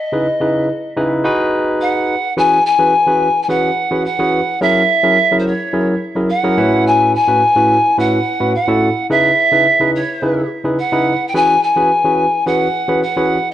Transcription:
Already playing: D#5
0.12 C#3 D#4 E4 G#4 B4
0.40 C#3 D#4 E4 G#4 B4
0.96 C#3 D#4 E4 G#4 B4
1.24 D#4 F#4 G#4 B4
1.81 F#5
2.37 E3 C#4 F#4 G#4 B4 G#5
2.65 G#5
2.79 E3 C#4 F#4 G#4 B4
3.07 E3 C#4 F#4 G#4 B4
3.42 G#5
3.49 E3 C#4 F#4 G#4 B4 F#5
3.91 E3 C#4 F#4 G#4 B4
4.05 F#5
4.19 E3 C#4 F#4 G#4 B4
4.61 F#3 C#4 E4 G#4 A#4 E5
5.03 F#3 C#4 E4 G#4 A#4
5.31 F#3 C#4 E4 G#4 A#4
5.39 C5
5.47 C#5
5.73 F#3 C#4 E4 G#4 A#4
6.15 F#3 C#4 E4 G#4 A#4
6.30 F#5
6.43 F#3 C#4 E4 G#4 A#4
6.57 A2 C#4 E4 F#4 B4
6.87 G#5
7.15 G#5
7.27 A2 C#4 E4 F#4 B4
7.56 A2 C#4 E4 F#4 B4
7.98 A2 C#4 E4 F#4 B4 F#5
8.40 A2 C#4 E4 F#4 B4
8.55 F#5
8.68 A2 C#4 E4 F#4 A4
9.10 C#3 D#4 E4 G#4 B4 E5
9.52 C#3 D#4 E4 G#4 B4
9.80 C#3 D#4 E4 G#4 B4
9.95 C#5
10.22 C#3 D#4 E4 G#4 B4
10.64 C#3 D#4 E4 G#4 B4
10.79 F#5
10.92 C#3 D#4 E4 G#4 B4
11.28 G5
11.34 E3 C#4 F#4 G#4 B4 G#5
11.63 G#5
11.76 E3 C#4 F#4 G#4 B4
12.04 E3 C#4 F#4 G#4 B4
12.46 E3 C#4 F#4 G#4 B4 F#5
12.88 E3 C#4 F#4 G#4 B4
13.03 F#5
13.16 E3 C#4 F#4 G#4 B4

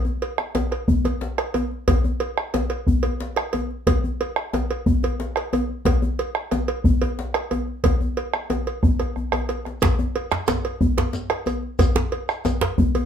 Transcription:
0.05 djembe slap, djembe tone
0.22 cowbell
0.38 bombo rim, djembe slap
0.55 bombo rim, cowbell, djembe slap, djembe tone
0.71 bombo rim, cowbell, djembe slap
0.88 bombo low, djembe bass
1.04 bombo rim, cowbell, djembe slap, djembe tone
1.21 djembe slap
1.38 bombo rim, cowbell
1.54 bombo rim, cowbell, djembe tone
1.72 djembe slap
1.88 bombo low, cowbell, djembe slap, djembe bass
2.04 djembe slap, djembe tone
2.20 cowbell, djembe slap
2.38 bombo rim
2.54 bombo rim, cowbell, djembe slap, djembe tone
2.70 cowbell
2.87 bombo low, djembe bass
3.03 cowbell, djembe tone
3.20 djembe slap
3.36 bombo rim, cowbell
3.53 cowbell, djembe tone
3.71 djembe slap
3.87 bombo low, cowbell, djembe slap, djembe bass
4.04 djembe slap, djembe tone
4.20 cowbell, djembe slap
4.36 bombo rim
4.53 bombo rim, cowbell, djembe slap, djembe tone
4.71 cowbell
4.86 bombo low, djembe bass
5.03 cowbell, djembe tone
5.20 djembe slap
5.36 bombo rim, cowbell
5.53 cowbell, djembe tone
5.69 djembe slap
5.85 bombo low, cowbell, djembe slap, djembe bass
6.02 djembe slap, djembe tone
6.19 cowbell, djembe slap
6.35 bombo rim
6.51 bombo rim, cowbell, djembe slap, djembe tone
6.68 cowbell
6.84 bombo low, djembe bass
7.02 cowbell, djembe tone
7.19 djembe slap
7.34 bombo rim, cowbell
7.51 cowbell, djembe tone
7.68 djembe slap
7.84 bombo low, cowbell, djembe slap, djembe bass
8.01 djembe tone
8.17 cowbell
8.34 bombo rim, djembe slap
8.50 cowbell, djembe slap, djembe tone
8.67 cowbell, djembe slap
8.83 bombo rim, bombo low, djembe bass
9.00 bombo rim, cowbell, djembe tone
9.16 bombo rim, djembe bass
9.32 bombo rim, cowbell, djembe bass
9.49 cowbell, djembe slap
9.65 bombo rim, djembe slap
9.82 bombo low, cowbell, djembe slap, djembe bass, shekere
9.99 djembe slap, djembe tone
10.15 cowbell, djembe slap
10.31 bombo rim, djembe slap, shekere
10.47 bombo rim, cowbell, djembe slap, djembe tone, shekere
10.65 cowbell
10.81 bombo low, djembe bass
10.97 cowbell, djembe slap, djembe tone
11.13 djembe slap, shekere
11.30 bombo rim, cowbell
11.46 cowbell, djembe tone, shekere
11.63 djembe slap
11.79 bombo low, cowbell, djembe slap, djembe bass, shekere
11.96 djembe slap, djembe tone
12.12 cowbell, djembe slap
12.29 bombo rim, shekere
12.45 bombo rim, cowbell, djembe slap, djembe tone, shekere
12.61 cowbell, djembe slap
12.78 bombo low, djembe bass
12.95 cowbell, djembe tone

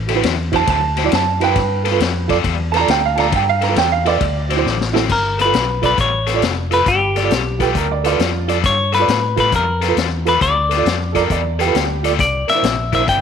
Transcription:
Already playing: A1
0.08 D3 F#3 C4 E4 F#4 A4, snare, ride
0.15 E4 F#4 B4
0.23 E2, snare, ride
0.52 D3 F#3 C4 E4 F#4 C5 A5, kick, snare, ride
0.67 D2 A5, kick, ride
0.96 D3 F#3 C4 E4 F#4 C5, snare, ride
1.04 E4 F#4 D5
1.12 F#2 A5, snare, ride
1.40 D3 F#3 C4 E4 F#4 B4 G5, snare, ride
1.56 G2, kick, snare, ride
1.84 G3 B3 F4 A4 B4, snare, ride
1.91 F4 A4 B4
2.00 F2, snare, ride
2.28 G3 B3 F4 A4 D5, kick, snare, ride
2.44 E2, kick, ride
2.72 G3 B3 F4 A4 B4 A5, snare, ride
2.77 F4 A4 A#5
2.81 D5
2.88 D2 G5, snare, ride
3.05 F5
3.16 G3 B3 F4 A4 D5 A5, snare, ride
3.20 A#5
3.32 G2 G5, kick, ride
3.49 F5
3.61 G3 B3 F4 A4 B4 A#5, snare, ride
3.69 F4 A4 B4
3.76 E2 G5, snare, ride
3.92 F5
4.05 G3 B3 F4 A4 B4 D5, snare, ride
4.21 D2, kick, ride
4.49 D3 F#3 C4 E4 F#4 C5, snare, ride
4.57 E4 F#4 C5
4.65 A1, snare
4.81 snare
4.93 D3 F#3 C4 E4 F#4 A4, snare
5.09 G1 A#4, kick, crash
5.38 G3 B3 F4 A4 B4, snare, closed hi-hat
5.45 F4 A4 B4
5.53 B1, snare, closed hi-hat
5.82 G3 B3 F4 A4 B4 D5, kick, snare, closed hi-hat
5.98 A1 C#5, kick, closed hi-hat
6.27 G3 B3 F4 A4 B4, snare, closed hi-hat
6.34 F4 A4 D5
6.42 F1, snare, closed hi-hat
6.71 G3 B3 F4 A4 B4, snare, closed hi-hat
6.86 G1 G4, kick, closed hi-hat
7.16 G3 B3 F4 A4 D5, snare, closed hi-hat
7.23 F4 A4 D5
7.31 B1, snare, closed hi-hat
7.59 G3 B3 F4 G4 A4 B4, kick, snare, closed hi-hat
7.75 D2 A#4, kick, closed hi-hat
7.92 D5
8.04 G3 B3 F4 A4 B4 D5, snare, closed hi-hat
8.11 F4 A4 B4
8.19 F2, snare, closed hi-hat
8.48 G3 B3 F4 A4 D5, snare, closed hi-hat
8.64 G2 C#5, kick, closed hi-hat
8.92 G3 B3 F4 A4 B4, snare, closed hi-hat
9.00 F4 A4 D5
9.08 A2, snare, closed hi-hat
9.36 G3 B3 F4 A4 B4, kick, snare, closed hi-hat
9.52 F2 A#4, kick, closed hi-hat
9.81 G3 B3 F4 A4 B4, snare, closed hi-hat
9.89 F4 A4 B4
9.97 E2, snare, closed hi-hat
10.26 G3 B3 F4 A4 B4, snare, closed hi-hat
10.41 D2 D5, kick, closed hi-hat
10.69 G3 B3 F4 A4 B4, snare, closed hi-hat
10.77 F4 A4 D5
10.86 F2, snare, closed hi-hat
11.12 B3 F4 A4 D5, kick, closed hi-hat
11.16 G3 A#4, snare
11.30 E2 D5, kick, closed hi-hat
11.59 G3 B3 F4 G4 A4 B4, snare, closed hi-hat
11.66 F4 A4 B4
11.75 D2 G4, snare, closed hi-hat
12.03 G3 B3 F4 A4 D5, snare, closed hi-hat
12.19 C2 D5, kick, snare, closed hi-hat
12.48 C3 A#3 D4 E4 A#4 D5 E5, muted fingered electric bass stroke, snare, closed hi-hat
12.55 E4 A#4 C5
12.63 A#1, snare, closed hi-hat
12.93 C3 A#3 D4 E4 A#4 C5 E5, kick, snare, closed hi-hat
13.08 G1 G5, kick, closed hi-hat

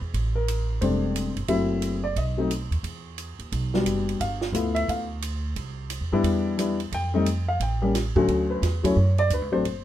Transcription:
0.01 E2
0.14 A1, kick, ride
0.35 A#4
0.48 hi-hat pedal, ride
0.81 E1 G3 A3 C4 D4 C5, kick, ride
1.16 hi-hat pedal, ride
1.36 G1, ride
1.48 F#1 F#3 A3 C4 E4 E5, kick, ride
1.82 hi-hat pedal, ride
2.04 D5
2.16 B1 D#5, kick, ride
2.37 F#3 A3 C4 D#4
2.51 hi-hat pedal, ride
2.71 D#2, ride
2.83 E2, kick, ride
3.18 hi-hat pedal, ride
3.39 D#2, ride
3.52 B1, kick, ride
3.74 G3 B3 D4 F#4, snare
3.85 F#1, hi-hat pedal, ride
4.09 ride
4.20 G1 F5, kick, ride
4.41 snare
4.52 D2 A3 B3 E4 F4, hi-hat pedal, ride
4.75 E5, ride
4.88 D2 F5, kick, ride
5.22 hi-hat pedal, ride
5.56 C2, kick, ride
5.90 hi-hat pedal, ride
6.01 E2
6.12 G2 G3 B3 D4 E4
6.23 E2, kick, ride
6.58 G3 B3 D4 E4, hi-hat pedal, ride
6.80 ride
6.92 F2 G5, kick, ride
7.14 G3 A3 C4 D#4
7.26 hi-hat pedal, ride
7.48 F5
7.60 A1 G5, kick, ride
7.82 G3 A#3 C#4 G4
7.95 snare, hi-hat pedal, ride
8.16 D2 A2 F#3 A3 C#4 F#4, kick
8.28 D2, kick, ride
8.50 B4
8.62 E2, kick, snare, hi-hat pedal, ride
8.83 F#3 A3 C#4 E4 C#5, kick, ride
8.96 F#2, kick
9.18 D5, ride
9.30 D2 B4, kick, hi-hat pedal, ride
9.42 C#2
9.52 A1 F#3 A3 C4 D4 C5
9.65 F#1, kick, ride

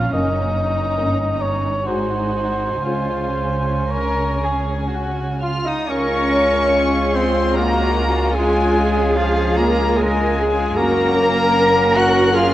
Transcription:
Already playing: A#1 C#4 F4 F5 A#5
0.13 F#1 F#2 A#3 C#4 D#4 D#5 A#5
0.97 G1 G2 A#3 C#4
1.42 C#5
1.87 G#1 G#2 G#3 D#4 F#4 C5 G#5
2.86 C#2 C#3 G#3 C#4 F4 C5
3.90 A#4 C#5
4.41 G#4
4.92 F#4
5.41 F4 F5 F6
5.65 D#4 D#5 D#6
5.87 C#2 G#3 C#4 F4 A#4 C#5 C#6
6.75 G#4
7.14 C4 C5 C6
7.56 A#3 F#4 A#4 A#5
8.35 G#3 F4 G#4 G#5
8.77 G#4
9.17 F3 G#3 F4 F5
9.57 A#3 A#4 A#5
9.97 G#3 F4 G#4 A#4 G#5
10.39 G#4
10.78 F#1 F#3 A#3 C#4 F#4 A#4 A#5
11.18 A#4
11.96 F#4 F#5 F#6
12.34 F#3 F4 G#4 F5 F6

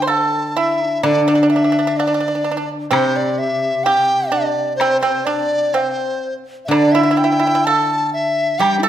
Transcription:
Already playing: D3
0.02 C5 C6
0.07 A4 A5, low woodblock
0.57 E4 E5
0.86 D4
1.03 D3 D4 D5, high woodblock
1.26 D4 D5
1.35 D4
1.43 D4
1.50 D4 E5
1.56 D4
1.64 D4
1.72 D4
1.79 D4
1.87 D4
1.97 D4 D5, low woodblock
2.07 D4
2.14 D4
2.20 D4
2.28 D4
2.35 D4
2.44 D4
2.51 D4
2.57 D4
2.91 C3 C4 C5, high woodblock
3.16 D5
3.38 E5
3.84 G4 G5, low woodblock
4.30 D4 D5
4.76 C5, high woodblock
4.81 C4
5.00 C4 C5
5.25 D4 D5
5.74 C4 C5, low woodblock
6.65 D3 D5 E5
6.71 D4, high woodblock
6.92 E4 E5
7.03 E4
7.11 E4
7.17 E4 G5
7.24 E4
7.32 E4
7.39 E4
7.47 E4
7.55 E4
7.65 A4 A5, low woodblock
8.13 E5
8.59 G3 G4 G5, high woodblock
8.79 D4 E4
8.83 A4 A5

